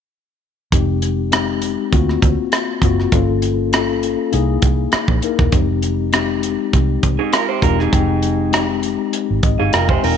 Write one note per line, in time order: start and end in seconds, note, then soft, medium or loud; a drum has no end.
0.72 1.75 F1 medium
0.72 1.25 G#3 medium
0.72 1.25 C4 medium
0.72 1.25 D#4 medium
0.72 1.26 G4 medium
0.72 kick medium
0.72 closed hi-hat medium
1.02 closed hi-hat medium
1.32 1.92 G#3 medium
1.32 1.91 C4 medium
1.32 1.92 D#4 medium
1.32 1.93 G4 medium
1.32 cross-stick loud
1.32 closed hi-hat medium
1.62 closed hi-hat medium
1.91 2.16 D2 medium
1.91 2.71 A#3 medium
1.91 2.71 C4 medium
1.91 2.72 F4 medium
1.91 2.72 F#4 medium
1.91 kick medium
1.91 closed hi-hat medium
2.09 cross-stick soft
2.22 2.35 D2 medium
2.22 kick medium
2.22 closed hi-hat medium
2.52 cross-stick loud
2.52 closed hi-hat medium
2.82 3.05 F#1 medium
2.82 3.08 A#3 medium
2.82 3.09 C4 medium
2.82 3.09 F4 medium
2.82 3.09 F#4 medium
2.82 kick medium
2.82 closed hi-hat medium
3.00 cross-stick soft
3.12 4.15 G1 medium
3.12 3.65 A#3 medium
3.12 3.65 C#4 medium
3.12 3.65 F4 medium
3.12 3.66 A4 medium
3.12 kick medium
3.12 closed hi-hat medium
3.42 closed hi-hat medium
3.72 4.31 A#3 medium
3.72 4.32 C#4 medium
3.72 4.33 F4 medium
3.72 4.33 A4 medium
3.72 cross-stick loud
3.72 closed hi-hat medium
4.03 closed hi-hat medium
4.32 4.56 C2 loud
4.32 5.11 A#3 medium
4.32 5.11 D#4 medium
4.32 5.12 E4 medium
4.32 5.12 G#4 medium
4.32 closed hi-hat medium
4.62 4.86 C2 medium
4.62 kick medium
4.62 closed hi-hat medium
4.92 muted fingered electric bass stroke soft
4.92 cross-stick medium
4.92 closed hi-hat medium
5.08 5.19 A#1 medium
5.08 kick medium
5.22 5.49 A#3 medium
5.22 5.49 D#4 medium
5.22 5.50 E4 medium
5.22 5.50 A#4 medium
5.22 closed hi-hat medium
5.39 5.50 E1 medium
5.39 kick medium
5.39 cross-stick soft
5.52 6.55 F1 medium
5.52 5.59 G3 medium
5.52 6.06 C4 medium
5.52 6.06 D#4 medium
5.52 6.06 G4 medium
5.52 kick medium
5.52 closed hi-hat medium
5.59 6.08 G#3 medium
5.82 closed hi-hat medium
6.12 7.18 G#3 medium
6.12 7.18 C4 medium
6.12 7.18 D#4 medium
6.12 7.19 G4 medium
6.12 cross-stick loud
6.12 closed hi-hat medium
6.43 closed hi-hat medium
6.73 6.96 C2 medium
6.73 kick medium
6.73 closed hi-hat medium
7.03 7.16 C2 medium
7.03 kick medium
7.03 closed hi-hat medium
7.19 7.32 D#4 medium
7.19 7.32 G#4 medium
7.33 7.49 F4 medium
7.33 7.48 A#4 medium
7.33 cross-stick loud
7.33 closed hi-hat medium
7.49 7.62 G4 medium
7.49 7.62 C5 medium
7.62 7.86 E1 medium
7.62 7.89 G#3 medium
7.62 7.89 C4 medium
7.62 7.89 D#4 medium
7.62 7.79 F4 medium
7.62 7.90 G4 medium
7.62 7.78 A#4 medium
7.62 kick medium
7.62 closed hi-hat medium
7.79 8.66 D#4 medium
7.79 8.65 G#4 medium
7.79 cross-stick soft
7.92 8.95 F1 medium
7.92 8.45 G#3 medium
7.92 8.46 C4 medium
7.92 8.46 D#4 medium
7.92 8.46 G5 medium
7.92 kick medium
7.92 closed hi-hat medium
8.22 closed hi-hat medium
8.52 9.58 G#3 medium
8.52 9.58 C4 medium
8.52 9.58 D#4 medium
8.52 9.59 G4 medium
8.52 cross-stick loud
8.52 closed hi-hat medium
8.83 closed hi-hat medium
9.13 closed hi-hat medium
9.30 9.41 G#1 medium
9.43 9.56 G#1 medium
9.43 9.58 D#5 medium
9.43 kick medium
9.43 closed hi-hat medium
9.59 9.71 G1 medium
9.59 9.73 D#4 soft
9.59 9.72 G#4 medium
9.59 9.72 F5 medium
9.73 9.89 F4 medium
9.73 9.89 A#4 medium
9.73 9.88 G5 medium
9.73 cross-stick loud
9.73 closed hi-hat medium
9.89 10.03 G4 medium
9.89 10.03 C5 medium
9.89 10.17 G#5 medium
9.89 kick medium
10.02 10.16 E1 medium
10.02 10.17 G#3 medium
10.02 10.17 C4 medium
10.02 10.17 D#4 medium
10.02 10.17 F4 medium
10.02 10.17 A#4 medium
10.02 open hi-hat medium